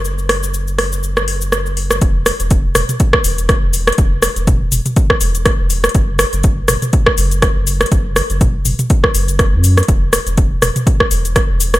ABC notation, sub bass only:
X:1
M:4/4
L:1/16
Q:"Swing 16ths" 1/4=122
K:F#phr
V:1 name="Sub bass" clef=bass
F,,,16 | E,,,2 z E,,,2 z E,,, z3 E,,,2 z E,,,2 z | E,,,2 z E,,,2 z E,,, z3 E,,,2 z E,,,2 z | F,,,2 z F,,,2 z F,,, z3 F,,,2 z F,,,2 z |
F,,,2 z F,,,2 z F,,, z3 F,,,3 F,,2 z | E,,,2 z E,,,2 z E,,, z3 E,,,2 z E,,,2 z |]